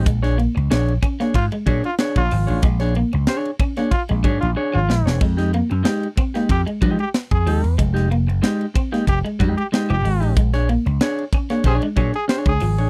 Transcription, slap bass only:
X:1
M:4/4
L:1/16
Q:1/4=93
K:Bbdor
V:1 name="Slap bass" clef=bass
B,,,3 ^C,, B,,,2 z2 A,, z B,, z2 B,,, A,,, =A,,, | B,,,3 ^C,, z4 z B,,, A,, B,,, z A,,, B,,, _F,,, | F,,3 _G,, z4 F,, z F, z2 F,, E,, _F,, | F,,,3 _G,,, z4 F,,, z F,, z2 F,,, A,,, =A,,, |
B,,,3 ^C,, z4 B,,, z B,, z2 C,, A,,, =A,,, |]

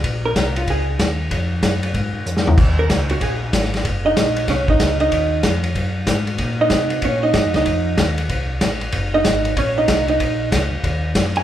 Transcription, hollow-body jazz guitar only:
X:1
M:4/4
L:1/8
Q:"Swing" 1/4=189
K:Bbm
V:1 name="Hollow-body jazz guitar"
z B2 F A z3 | z8 | z B2 G A z3 | z [Ee]3 [Dd] [Ee]2 [Ee]- |
[Ee]2 z6 | z [Ee]3 [Dd] [Ee]2 [Ee]- | [Ee]2 z6 | z [Ee]3 [Dd] [Ee]2 [Ee]- |
[Ee]2 z4 z a |]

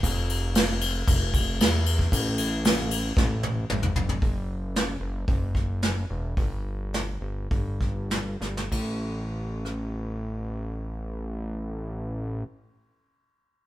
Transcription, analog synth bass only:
X:1
M:4/4
L:1/8
Q:1/4=108
K:Emix
V:1 name="Analog synth bass" clef=bass
=F,,,4 F,,,2 E,,2 | A,,,4 A,,,2 G,,, F,,, | F,,,3 F,,, F,,,3 E,,, | =G,,,3 G,,, G,,,3 G,,, |
A,,,8- | A,,,8 |]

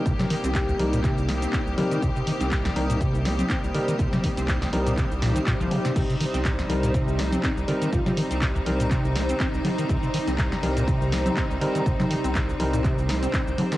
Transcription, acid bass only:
X:1
M:4/4
L:1/16
Q:"Swing 16ths" 1/4=122
K:Cm
V:1 name="Acid bass" clef=bass
C, C, E, C z C,, F, B,, C,2 B, C C z D, E, | C, C, E, C z C,, F, B,, C,2 B, C C z D, E, | C, C, E, C z C,, F, B,, C, z B,, E, B,, F, C, C, | C, C, E, C C, C,, F, B,, C,2 B, C C z D, E, |
C, C, E, C C, C,, F, B,, C,2 B, C C z D, E, | C, C, E, C C, C,, F, B,, C,2 B, C C z D, E, | C, C, E, C C, C,, F, B,, C,2 B, C C z D, E, |]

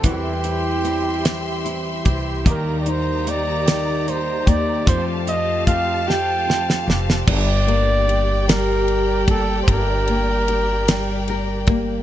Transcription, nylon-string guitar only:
X:1
M:6/8
L:1/8
Q:3/8=50
K:Gm
V:1 name="Nylon-string guitar"
=E, =E C G E C | E, E B, G E B, | F, F C G F C | G,, B, G G,2 B, |
G,, B, G G, B B, |]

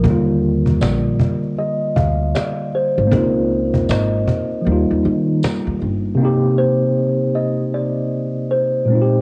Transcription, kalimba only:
X:1
M:4/4
L:1/8
Q:"Swing 16ths" 1/4=78
K:Cm
V:1 name="Kalimba"
B2 d2 e f d c | B2 e4- e z | z c2 e d2 c2 |]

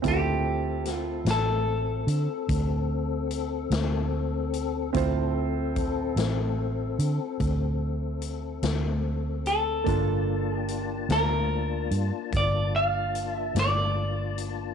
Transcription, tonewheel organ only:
X:1
M:12/8
L:1/8
Q:3/8=49
K:Dm
V:1 name="Tonewheel organ"
[^C,B,A] [=CA]8- [CA]3 | [CA]12 | [B,DFa]12 |]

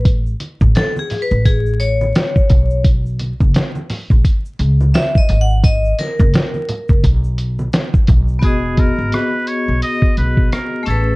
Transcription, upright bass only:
X:1
M:4/4
L:1/16
Q:"Swing 16ths" 1/4=86
K:Elyd
V:1 name="Upright bass" clef=bass
=A,,,2 z A,,, z3 A,,,4- A,,, z2 B,,,2- | B,,,3 F,,, z3 A,,, z2 C,,2 z2 G,,,2- | G,,,2 z F,,, z3 F,,, B,,,4 z2 B,,,2 | E,,,3 G,,, z3 B,,, z2 B,,,2 z2 =A,,,2 |]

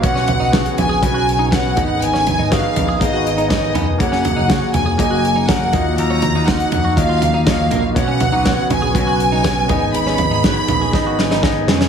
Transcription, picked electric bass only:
X:1
M:4/4
L:1/16
Q:1/4=121
K:G#dor
V:1 name="Picked electric bass" clef=bass
B,,,3 B,,,2 z A,,,2 B,,,6 G,,,2 | G,,,3 G,,,2 z A,,,2 G,,,6 E,,,2 | F,,,3 F,,,2 z E,,,2 F,,,6 D,,2 | D,,3 D,,2 z E,,2 D,,6 A,,,2 |
B,,,3 B,,,2 z A,,,2 B,,,6 G,,,2 | G,,,3 G,,,2 z A,,,2 G,,,6 E,,,2 |]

